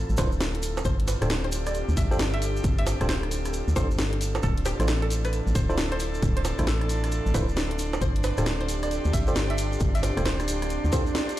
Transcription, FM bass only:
0.10 A1
0.18 D1
0.85 G1
1.22 D1
1.89 D2
1.97 G1
2.64 G1
3.01 D1
3.68 D2
3.76 G1
4.43 D1
4.80 A1
5.47 A1
5.55 D1
6.22 D1
6.59 A1
7.26 A1
7.34 D1
8.01 G1
8.38 D1
9.05 D2
9.13 G1
9.81 G1
10.17 D1
10.84 D2

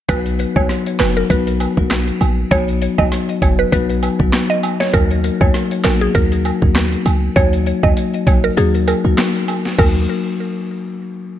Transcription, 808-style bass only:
0.09 B1
0.56 B1
1.00 F#1
1.30 B1
1.77 B1
2.21 A#1
2.51 B1
2.98 B1
3.42 F#1
3.72 B1
4.20 A#1
4.94 D#2
5.41 D#2
5.85 A#1
6.15 D#2
6.62 D#2
7.06 C#2
7.36 D#2
7.83 D#2
8.27 A#1
8.57 D#2
9.05 C#2
9.79 D#2

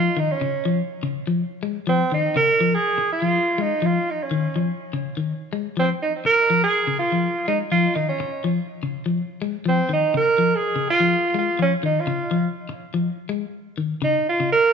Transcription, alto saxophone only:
Already playing: F4
0.19 D#4
0.32 C#4
1.89 C4
2.14 D#4
2.37 A#4
2.74 G#4
3.13 F4
3.61 D#4
3.86 F4
4.11 D#4
4.23 C#4
5.79 C4
6.02 D#4
6.26 A#4
6.64 G#4
6.99 F4
7.48 D#4
7.71 F4
7.95 D#4
8.09 C#4
9.69 C4
9.93 D#4
10.17 A#4
10.56 G#4
10.90 F4
11.39 F4
11.62 C#4
11.86 D#4
12.00 F4
14.04 D#4
14.29 F4
14.52 A#4

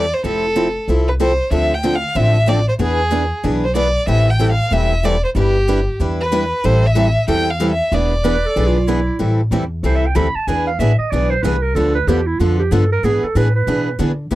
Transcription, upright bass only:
Already playing: E2
0.24 F1
0.88 C2
1.51 D2
2.15 A1
2.79 E2
3.44 B1
4.07 A1
4.71 E1
5.35 G1
6.00 E2
6.64 A1
7.28 E2
7.92 E1
8.56 B1
9.19 A1
9.51 E2
9.83 C2
10.16 D2
10.35 muted upright bass stroke
10.47 E2
10.79 A1
10.99 muted upright bass stroke
11.12 B1
11.43 C2
11.75 D2
12.07 E2
12.40 F2
12.71 G2
13.03 G#2
13.23 muted upright bass stroke
13.35 A2
13.67 B2
13.99 D3
14.31 C3

